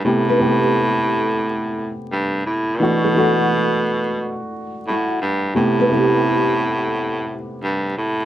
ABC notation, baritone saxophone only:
X:1
M:4/4
L:1/16
Q:"Swing 16ths" 1/4=87
K:Ador
V:1 name="Baritone saxophone" clef=bass
A,,8- A,,3 z G,,2 A,,2 | B,,8- B,,2 z2 A,,2 G,,2 | A,,8- A,,3 z G,,2 A,,2 |]